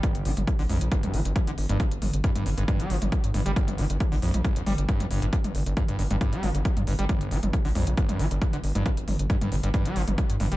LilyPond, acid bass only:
\new Staff \with { instrumentName = "Acid bass" } { \clef bass \time 4/4 \key g \minor \tempo 4 = 136 g,,8 f16 r8 d16 f,16 r16 g,,16 g,16 f16 r16 g,16 d16 r16 g,16 | g,16 r8. g,16 g,16 g,16 g,16 g,16 g16 f16 r8. g,16 g16 | g,,8 f16 r8 d16 f,16 r16 g,,16 g,16 g16 r16 g,16 f,16 g,16 g,16 | g,16 r8. g,16 g,16 g,16 g,16 g,16 g16 f16 r8. g,16 g16 |
g,,8 f16 r8 d16 f,16 r16 g,,16 g,16 f16 r16 g,16 d16 r16 g,16 | g,16 r8. g,16 g,16 g,16 g,16 g,16 g16 f16 r8. g,16 g16 | }